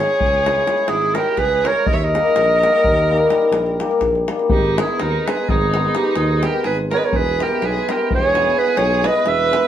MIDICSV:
0, 0, Header, 1, 6, 480
1, 0, Start_track
1, 0, Tempo, 478088
1, 1872, Time_signature, 11, 3, 24, 8
1, 9715, End_track
2, 0, Start_track
2, 0, Title_t, "Clarinet"
2, 0, Program_c, 0, 71
2, 0, Note_on_c, 0, 73, 94
2, 885, Note_on_c, 0, 68, 89
2, 900, Note_off_c, 0, 73, 0
2, 1152, Note_on_c, 0, 70, 86
2, 1167, Note_off_c, 0, 68, 0
2, 1392, Note_on_c, 0, 71, 93
2, 1407, Note_off_c, 0, 70, 0
2, 1674, Note_on_c, 0, 73, 93
2, 1689, Note_off_c, 0, 71, 0
2, 1875, Note_on_c, 0, 75, 80
2, 1890, Note_off_c, 0, 73, 0
2, 1953, Note_on_c, 0, 76, 68
2, 1968, Note_off_c, 0, 75, 0
2, 2039, Note_on_c, 0, 75, 108
2, 2054, Note_off_c, 0, 76, 0
2, 4024, Note_off_c, 0, 75, 0
2, 4518, Note_on_c, 0, 67, 75
2, 4810, Note_on_c, 0, 68, 74
2, 4825, Note_off_c, 0, 67, 0
2, 5035, Note_on_c, 0, 70, 76
2, 5050, Note_off_c, 0, 68, 0
2, 5277, Note_on_c, 0, 71, 73
2, 5292, Note_off_c, 0, 70, 0
2, 5520, Note_on_c, 0, 68, 86
2, 5535, Note_off_c, 0, 71, 0
2, 5984, Note_on_c, 0, 67, 81
2, 5999, Note_off_c, 0, 68, 0
2, 6182, Note_on_c, 0, 68, 72
2, 6197, Note_off_c, 0, 67, 0
2, 6489, Note_on_c, 0, 70, 76
2, 6504, Note_off_c, 0, 68, 0
2, 6686, Note_off_c, 0, 70, 0
2, 6691, Note_on_c, 0, 71, 77
2, 6809, Note_off_c, 0, 71, 0
2, 6964, Note_on_c, 0, 73, 84
2, 7010, Note_on_c, 0, 75, 67
2, 7025, Note_off_c, 0, 73, 0
2, 7075, Note_on_c, 0, 73, 80
2, 7090, Note_off_c, 0, 75, 0
2, 7186, Note_on_c, 0, 71, 95
2, 7201, Note_off_c, 0, 73, 0
2, 7460, Note_on_c, 0, 70, 86
2, 7475, Note_off_c, 0, 71, 0
2, 7681, Note_on_c, 0, 71, 74
2, 7696, Note_off_c, 0, 70, 0
2, 7946, Note_on_c, 0, 70, 83
2, 7961, Note_off_c, 0, 71, 0
2, 8151, Note_off_c, 0, 70, 0
2, 8180, Note_on_c, 0, 73, 105
2, 8614, Note_on_c, 0, 71, 98
2, 8629, Note_off_c, 0, 73, 0
2, 8806, Note_on_c, 0, 73, 90
2, 8821, Note_off_c, 0, 71, 0
2, 9097, Note_on_c, 0, 75, 98
2, 9112, Note_off_c, 0, 73, 0
2, 9311, Note_on_c, 0, 76, 102
2, 9326, Note_off_c, 0, 75, 0
2, 9715, Note_off_c, 0, 76, 0
2, 9715, End_track
3, 0, Start_track
3, 0, Title_t, "Violin"
3, 0, Program_c, 1, 40
3, 0, Note_on_c, 1, 68, 76
3, 895, Note_on_c, 1, 64, 72
3, 910, Note_off_c, 1, 68, 0
3, 1185, Note_on_c, 1, 67, 70
3, 1200, Note_off_c, 1, 64, 0
3, 1375, Note_on_c, 1, 68, 82
3, 1390, Note_off_c, 1, 67, 0
3, 1646, Note_on_c, 1, 70, 80
3, 1662, Note_off_c, 1, 68, 0
3, 1872, Note_off_c, 1, 70, 0
3, 1872, Note_on_c, 1, 70, 81
3, 1937, Note_on_c, 1, 73, 74
3, 1952, Note_off_c, 1, 70, 0
3, 2044, Note_on_c, 1, 70, 89
3, 2059, Note_off_c, 1, 73, 0
3, 4026, Note_off_c, 1, 70, 0
3, 4526, Note_on_c, 1, 63, 66
3, 4789, Note_on_c, 1, 64, 62
3, 4804, Note_off_c, 1, 63, 0
3, 5012, Note_on_c, 1, 63, 63
3, 5027, Note_off_c, 1, 64, 0
3, 5297, Note_on_c, 1, 68, 60
3, 5312, Note_off_c, 1, 63, 0
3, 5528, Note_on_c, 1, 63, 66
3, 5543, Note_off_c, 1, 68, 0
3, 5975, Note_off_c, 1, 63, 0
3, 5975, Note_on_c, 1, 63, 74
3, 6176, Note_off_c, 1, 63, 0
3, 6176, Note_on_c, 1, 63, 67
3, 6457, Note_on_c, 1, 67, 71
3, 6472, Note_off_c, 1, 63, 0
3, 6659, Note_off_c, 1, 67, 0
3, 6665, Note_on_c, 1, 68, 73
3, 6789, Note_off_c, 1, 68, 0
3, 6935, Note_on_c, 1, 70, 84
3, 6993, Note_on_c, 1, 71, 70
3, 7008, Note_off_c, 1, 70, 0
3, 7064, Note_on_c, 1, 70, 56
3, 7079, Note_off_c, 1, 71, 0
3, 7162, Note_on_c, 1, 68, 79
3, 7177, Note_off_c, 1, 70, 0
3, 7454, Note_on_c, 1, 67, 74
3, 7469, Note_off_c, 1, 68, 0
3, 7681, Note_on_c, 1, 68, 79
3, 7696, Note_off_c, 1, 67, 0
3, 7949, Note_on_c, 1, 67, 66
3, 7964, Note_off_c, 1, 68, 0
3, 8153, Note_off_c, 1, 67, 0
3, 8172, Note_on_c, 1, 68, 86
3, 8608, Note_off_c, 1, 68, 0
3, 8608, Note_on_c, 1, 68, 87
3, 8816, Note_off_c, 1, 68, 0
3, 8816, Note_on_c, 1, 68, 87
3, 9078, Note_on_c, 1, 71, 80
3, 9093, Note_off_c, 1, 68, 0
3, 9291, Note_off_c, 1, 71, 0
3, 9291, Note_on_c, 1, 71, 94
3, 9715, Note_off_c, 1, 71, 0
3, 9715, End_track
4, 0, Start_track
4, 0, Title_t, "Hammered dulcimer"
4, 0, Program_c, 2, 15
4, 0, Note_on_c, 2, 56, 58
4, 0, Note_on_c, 2, 61, 51
4, 0, Note_on_c, 2, 64, 54
4, 0, Note_on_c, 2, 68, 66
4, 134, Note_off_c, 2, 61, 0
4, 138, Note_off_c, 2, 64, 0
4, 139, Note_off_c, 2, 68, 0
4, 445, Note_off_c, 2, 56, 0
4, 457, Note_on_c, 2, 56, 73
4, 462, Note_on_c, 2, 61, 72
4, 469, Note_on_c, 2, 64, 65
4, 469, Note_on_c, 2, 68, 81
4, 601, Note_off_c, 2, 61, 0
4, 605, Note_off_c, 2, 64, 0
4, 605, Note_off_c, 2, 68, 0
4, 647, Note_off_c, 2, 56, 0
4, 659, Note_on_c, 2, 56, 68
4, 665, Note_on_c, 2, 61, 69
4, 666, Note_on_c, 2, 64, 67
4, 677, Note_on_c, 2, 68, 73
4, 808, Note_off_c, 2, 61, 0
4, 808, Note_off_c, 2, 64, 0
4, 814, Note_off_c, 2, 68, 0
4, 1139, Note_off_c, 2, 56, 0
4, 1151, Note_on_c, 2, 56, 61
4, 1157, Note_on_c, 2, 61, 57
4, 1168, Note_on_c, 2, 64, 58
4, 1169, Note_on_c, 2, 68, 72
4, 1303, Note_off_c, 2, 61, 0
4, 1308, Note_off_c, 2, 64, 0
4, 1309, Note_off_c, 2, 68, 0
4, 1627, Note_off_c, 2, 56, 0
4, 1639, Note_on_c, 2, 56, 56
4, 1647, Note_on_c, 2, 61, 51
4, 1657, Note_on_c, 2, 64, 60
4, 1663, Note_on_c, 2, 68, 65
4, 1795, Note_off_c, 2, 61, 0
4, 1801, Note_off_c, 2, 64, 0
4, 1803, Note_off_c, 2, 68, 0
4, 1923, Note_off_c, 2, 56, 0
4, 2149, Note_on_c, 2, 55, 59
4, 2151, Note_on_c, 2, 58, 65
4, 2154, Note_on_c, 2, 63, 61
4, 2166, Note_on_c, 2, 67, 69
4, 2294, Note_off_c, 2, 58, 0
4, 2296, Note_off_c, 2, 63, 0
4, 2302, Note_off_c, 2, 67, 0
4, 2632, Note_off_c, 2, 55, 0
4, 2644, Note_on_c, 2, 55, 64
4, 2647, Note_on_c, 2, 58, 58
4, 2658, Note_on_c, 2, 67, 64
4, 2659, Note_on_c, 2, 63, 58
4, 2790, Note_off_c, 2, 58, 0
4, 2795, Note_off_c, 2, 67, 0
4, 2796, Note_off_c, 2, 63, 0
4, 3095, Note_off_c, 2, 55, 0
4, 3107, Note_on_c, 2, 55, 72
4, 3113, Note_on_c, 2, 58, 69
4, 3121, Note_on_c, 2, 63, 66
4, 3126, Note_on_c, 2, 67, 74
4, 3251, Note_off_c, 2, 58, 0
4, 3255, Note_off_c, 2, 63, 0
4, 3258, Note_off_c, 2, 67, 0
4, 3304, Note_off_c, 2, 55, 0
4, 3317, Note_on_c, 2, 55, 75
4, 3331, Note_on_c, 2, 58, 54
4, 3333, Note_on_c, 2, 63, 62
4, 3344, Note_on_c, 2, 67, 83
4, 3465, Note_off_c, 2, 58, 0
4, 3466, Note_off_c, 2, 63, 0
4, 3472, Note_off_c, 2, 67, 0
4, 3799, Note_off_c, 2, 55, 0
4, 3811, Note_on_c, 2, 55, 73
4, 3817, Note_on_c, 2, 58, 65
4, 3818, Note_on_c, 2, 63, 64
4, 3825, Note_on_c, 2, 67, 90
4, 3957, Note_off_c, 2, 63, 0
4, 3958, Note_off_c, 2, 58, 0
4, 3959, Note_off_c, 2, 67, 0
4, 4291, Note_off_c, 2, 55, 0
4, 4303, Note_on_c, 2, 55, 74
4, 4304, Note_on_c, 2, 58, 61
4, 4317, Note_on_c, 2, 63, 65
4, 4321, Note_on_c, 2, 67, 76
4, 4447, Note_off_c, 2, 58, 0
4, 4454, Note_off_c, 2, 63, 0
4, 4456, Note_off_c, 2, 67, 0
4, 4570, Note_off_c, 2, 55, 0
4, 4788, Note_on_c, 2, 56, 67
4, 4796, Note_on_c, 2, 59, 56
4, 4803, Note_on_c, 2, 63, 56
4, 4810, Note_on_c, 2, 68, 72
4, 4940, Note_off_c, 2, 59, 0
4, 4943, Note_off_c, 2, 63, 0
4, 4947, Note_off_c, 2, 68, 0
4, 5285, Note_off_c, 2, 56, 0
4, 5297, Note_on_c, 2, 56, 65
4, 5305, Note_on_c, 2, 59, 54
4, 5307, Note_on_c, 2, 63, 52
4, 5313, Note_on_c, 2, 68, 72
4, 5441, Note_off_c, 2, 59, 0
4, 5442, Note_off_c, 2, 63, 0
4, 5445, Note_off_c, 2, 68, 0
4, 5740, Note_off_c, 2, 56, 0
4, 5752, Note_on_c, 2, 56, 66
4, 5767, Note_on_c, 2, 59, 58
4, 5771, Note_on_c, 2, 63, 61
4, 5772, Note_on_c, 2, 68, 76
4, 5900, Note_off_c, 2, 59, 0
4, 5902, Note_off_c, 2, 63, 0
4, 5902, Note_off_c, 2, 68, 0
4, 5959, Note_off_c, 2, 56, 0
4, 5971, Note_on_c, 2, 56, 55
4, 5976, Note_on_c, 2, 59, 52
4, 5983, Note_on_c, 2, 63, 52
4, 5988, Note_on_c, 2, 68, 64
4, 6109, Note_off_c, 2, 59, 0
4, 6112, Note_off_c, 2, 63, 0
4, 6115, Note_off_c, 2, 68, 0
4, 6449, Note_off_c, 2, 56, 0
4, 6461, Note_on_c, 2, 56, 58
4, 6471, Note_on_c, 2, 59, 53
4, 6474, Note_on_c, 2, 63, 55
4, 6480, Note_on_c, 2, 68, 76
4, 6604, Note_off_c, 2, 59, 0
4, 6605, Note_off_c, 2, 63, 0
4, 6608, Note_off_c, 2, 68, 0
4, 6938, Note_off_c, 2, 56, 0
4, 6949, Note_on_c, 2, 56, 65
4, 6952, Note_on_c, 2, 59, 61
4, 6958, Note_on_c, 2, 63, 54
4, 6966, Note_on_c, 2, 68, 72
4, 7090, Note_off_c, 2, 59, 0
4, 7093, Note_off_c, 2, 63, 0
4, 7097, Note_off_c, 2, 68, 0
4, 7208, Note_off_c, 2, 56, 0
4, 7426, Note_on_c, 2, 56, 65
4, 7434, Note_on_c, 2, 59, 53
4, 7440, Note_on_c, 2, 64, 64
4, 7440, Note_on_c, 2, 68, 74
4, 7577, Note_off_c, 2, 59, 0
4, 7579, Note_off_c, 2, 68, 0
4, 7580, Note_off_c, 2, 64, 0
4, 7904, Note_off_c, 2, 56, 0
4, 7916, Note_on_c, 2, 56, 62
4, 7928, Note_on_c, 2, 59, 59
4, 7932, Note_on_c, 2, 64, 62
4, 7937, Note_on_c, 2, 68, 69
4, 8069, Note_off_c, 2, 59, 0
4, 8071, Note_off_c, 2, 64, 0
4, 8074, Note_off_c, 2, 68, 0
4, 8379, Note_off_c, 2, 56, 0
4, 8390, Note_on_c, 2, 59, 60
4, 8391, Note_on_c, 2, 56, 66
4, 8397, Note_on_c, 2, 64, 61
4, 8407, Note_on_c, 2, 68, 76
4, 8526, Note_off_c, 2, 59, 0
4, 8530, Note_off_c, 2, 64, 0
4, 8535, Note_off_c, 2, 68, 0
4, 8579, Note_off_c, 2, 56, 0
4, 8591, Note_on_c, 2, 56, 55
4, 8602, Note_on_c, 2, 59, 59
4, 8607, Note_on_c, 2, 64, 63
4, 8613, Note_on_c, 2, 68, 64
4, 8737, Note_off_c, 2, 59, 0
4, 8739, Note_off_c, 2, 64, 0
4, 8742, Note_off_c, 2, 68, 0
4, 9042, Note_off_c, 2, 56, 0
4, 9054, Note_on_c, 2, 56, 61
4, 9062, Note_on_c, 2, 59, 61
4, 9063, Note_on_c, 2, 64, 59
4, 9075, Note_on_c, 2, 68, 74
4, 9213, Note_off_c, 2, 59, 0
4, 9213, Note_off_c, 2, 64, 0
4, 9219, Note_off_c, 2, 68, 0
4, 9544, Note_off_c, 2, 56, 0
4, 9554, Note_on_c, 2, 59, 62
4, 9556, Note_on_c, 2, 56, 60
4, 9568, Note_on_c, 2, 64, 61
4, 9571, Note_on_c, 2, 68, 72
4, 9703, Note_off_c, 2, 59, 0
4, 9710, Note_off_c, 2, 64, 0
4, 9712, Note_off_c, 2, 68, 0
4, 9715, Note_off_c, 2, 56, 0
4, 9715, End_track
5, 0, Start_track
5, 0, Title_t, "Tuba"
5, 0, Program_c, 3, 58
5, 215, Note_on_c, 3, 37, 82
5, 616, Note_off_c, 3, 37, 0
5, 884, Note_on_c, 3, 32, 71
5, 1181, Note_off_c, 3, 32, 0
5, 1380, Note_on_c, 3, 37, 77
5, 1676, Note_off_c, 3, 37, 0
5, 1891, Note_on_c, 3, 39, 85
5, 2182, Note_off_c, 3, 39, 0
5, 2379, Note_on_c, 3, 34, 96
5, 2672, Note_off_c, 3, 34, 0
5, 2863, Note_on_c, 3, 39, 86
5, 3265, Note_off_c, 3, 39, 0
5, 3526, Note_on_c, 3, 34, 84
5, 3824, Note_off_c, 3, 34, 0
5, 4031, Note_on_c, 3, 34, 84
5, 4326, Note_off_c, 3, 34, 0
5, 4521, Note_on_c, 3, 32, 97
5, 4816, Note_off_c, 3, 32, 0
5, 5026, Note_on_c, 3, 39, 94
5, 5187, Note_off_c, 3, 39, 0
5, 5518, Note_on_c, 3, 32, 111
5, 5915, Note_off_c, 3, 32, 0
5, 6179, Note_on_c, 3, 39, 101
5, 6473, Note_off_c, 3, 39, 0
5, 6675, Note_on_c, 3, 32, 81
5, 6967, Note_off_c, 3, 32, 0
5, 7168, Note_on_c, 3, 28, 94
5, 7460, Note_off_c, 3, 28, 0
5, 7651, Note_on_c, 3, 35, 96
5, 7815, Note_off_c, 3, 35, 0
5, 8141, Note_on_c, 3, 28, 94
5, 8539, Note_off_c, 3, 28, 0
5, 8805, Note_on_c, 3, 35, 102
5, 9098, Note_off_c, 3, 35, 0
5, 9289, Note_on_c, 3, 28, 91
5, 9583, Note_off_c, 3, 28, 0
5, 9715, End_track
6, 0, Start_track
6, 0, Title_t, "Davul"
6, 205, Note_on_c, 9, 43, 85
6, 306, Note_off_c, 9, 43, 0
6, 335, Note_on_c, 9, 37, 25
6, 436, Note_off_c, 9, 37, 0
6, 466, Note_on_c, 9, 37, 72
6, 566, Note_off_c, 9, 37, 0
6, 572, Note_on_c, 9, 37, 21
6, 673, Note_off_c, 9, 37, 0
6, 677, Note_on_c, 9, 37, 67
6, 777, Note_off_c, 9, 37, 0
6, 781, Note_on_c, 9, 37, 31
6, 882, Note_off_c, 9, 37, 0
6, 883, Note_on_c, 9, 37, 70
6, 983, Note_off_c, 9, 37, 0
6, 1020, Note_on_c, 9, 37, 29
6, 1120, Note_off_c, 9, 37, 0
6, 1153, Note_on_c, 9, 37, 72
6, 1253, Note_off_c, 9, 37, 0
6, 1379, Note_on_c, 9, 37, 56
6, 1379, Note_on_c, 9, 43, 58
6, 1479, Note_off_c, 9, 37, 0
6, 1479, Note_off_c, 9, 43, 0
6, 1656, Note_on_c, 9, 37, 71
6, 1756, Note_off_c, 9, 37, 0
6, 1762, Note_on_c, 9, 37, 24
6, 1862, Note_off_c, 9, 37, 0
6, 1872, Note_on_c, 9, 43, 97
6, 1972, Note_off_c, 9, 43, 0
6, 2015, Note_on_c, 9, 37, 26
6, 2115, Note_off_c, 9, 37, 0
6, 2159, Note_on_c, 9, 37, 67
6, 2260, Note_off_c, 9, 37, 0
6, 2267, Note_on_c, 9, 37, 23
6, 2368, Note_off_c, 9, 37, 0
6, 2368, Note_on_c, 9, 37, 69
6, 2469, Note_off_c, 9, 37, 0
6, 2513, Note_on_c, 9, 37, 28
6, 2613, Note_off_c, 9, 37, 0
6, 2645, Note_on_c, 9, 37, 68
6, 2745, Note_off_c, 9, 37, 0
6, 2760, Note_on_c, 9, 37, 26
6, 2854, Note_on_c, 9, 43, 82
6, 2860, Note_off_c, 9, 37, 0
6, 2955, Note_off_c, 9, 43, 0
6, 2982, Note_on_c, 9, 37, 28
6, 3082, Note_off_c, 9, 37, 0
6, 3317, Note_on_c, 9, 37, 67
6, 3418, Note_off_c, 9, 37, 0
6, 3430, Note_on_c, 9, 37, 28
6, 3531, Note_off_c, 9, 37, 0
6, 3539, Note_on_c, 9, 37, 74
6, 3640, Note_off_c, 9, 37, 0
6, 3678, Note_on_c, 9, 37, 24
6, 3778, Note_off_c, 9, 37, 0
6, 3815, Note_on_c, 9, 37, 71
6, 3915, Note_off_c, 9, 37, 0
6, 3925, Note_on_c, 9, 37, 27
6, 4025, Note_off_c, 9, 37, 0
6, 4025, Note_on_c, 9, 37, 59
6, 4025, Note_on_c, 9, 43, 57
6, 4126, Note_off_c, 9, 37, 0
6, 4126, Note_off_c, 9, 43, 0
6, 4170, Note_on_c, 9, 37, 26
6, 4270, Note_off_c, 9, 37, 0
6, 4297, Note_on_c, 9, 37, 70
6, 4397, Note_off_c, 9, 37, 0
6, 4411, Note_on_c, 9, 37, 27
6, 4511, Note_off_c, 9, 37, 0
6, 4513, Note_on_c, 9, 43, 109
6, 4614, Note_off_c, 9, 43, 0
6, 4665, Note_on_c, 9, 37, 25
6, 4765, Note_off_c, 9, 37, 0
6, 4800, Note_on_c, 9, 37, 85
6, 4901, Note_off_c, 9, 37, 0
6, 5015, Note_on_c, 9, 37, 71
6, 5116, Note_off_c, 9, 37, 0
6, 5297, Note_on_c, 9, 37, 76
6, 5398, Note_off_c, 9, 37, 0
6, 5509, Note_on_c, 9, 43, 89
6, 5609, Note_off_c, 9, 43, 0
6, 5639, Note_on_c, 9, 37, 29
6, 5740, Note_off_c, 9, 37, 0
6, 5760, Note_on_c, 9, 37, 68
6, 5860, Note_off_c, 9, 37, 0
6, 5867, Note_on_c, 9, 37, 22
6, 5968, Note_off_c, 9, 37, 0
6, 5971, Note_on_c, 9, 37, 72
6, 6071, Note_off_c, 9, 37, 0
6, 6074, Note_on_c, 9, 37, 28
6, 6174, Note_off_c, 9, 37, 0
6, 6180, Note_on_c, 9, 37, 61
6, 6280, Note_off_c, 9, 37, 0
6, 6317, Note_on_c, 9, 37, 22
6, 6418, Note_off_c, 9, 37, 0
6, 6453, Note_on_c, 9, 37, 68
6, 6553, Note_off_c, 9, 37, 0
6, 6670, Note_on_c, 9, 37, 55
6, 6770, Note_off_c, 9, 37, 0
6, 6810, Note_on_c, 9, 37, 24
6, 6910, Note_off_c, 9, 37, 0
6, 6942, Note_on_c, 9, 37, 60
6, 7043, Note_off_c, 9, 37, 0
6, 7049, Note_on_c, 9, 37, 26
6, 7149, Note_off_c, 9, 37, 0
6, 7155, Note_on_c, 9, 43, 78
6, 7255, Note_off_c, 9, 43, 0
6, 7299, Note_on_c, 9, 37, 21
6, 7399, Note_off_c, 9, 37, 0
6, 7433, Note_on_c, 9, 37, 63
6, 7534, Note_off_c, 9, 37, 0
6, 7652, Note_on_c, 9, 37, 55
6, 7753, Note_off_c, 9, 37, 0
6, 7919, Note_on_c, 9, 37, 69
6, 8019, Note_off_c, 9, 37, 0
6, 8138, Note_on_c, 9, 43, 79
6, 8238, Note_off_c, 9, 43, 0
6, 8263, Note_on_c, 9, 37, 27
6, 8364, Note_off_c, 9, 37, 0
6, 8385, Note_on_c, 9, 37, 64
6, 8485, Note_off_c, 9, 37, 0
6, 8705, Note_on_c, 9, 37, 26
6, 8805, Note_off_c, 9, 37, 0
6, 8807, Note_on_c, 9, 37, 72
6, 8907, Note_off_c, 9, 37, 0
6, 8944, Note_on_c, 9, 37, 26
6, 9045, Note_off_c, 9, 37, 0
6, 9079, Note_on_c, 9, 37, 70
6, 9179, Note_off_c, 9, 37, 0
6, 9293, Note_on_c, 9, 37, 59
6, 9394, Note_off_c, 9, 37, 0
6, 9431, Note_on_c, 9, 37, 28
6, 9532, Note_off_c, 9, 37, 0
6, 9569, Note_on_c, 9, 37, 68
6, 9669, Note_off_c, 9, 37, 0
6, 9672, Note_on_c, 9, 37, 29
6, 9715, Note_off_c, 9, 37, 0
6, 9715, End_track
0, 0, End_of_file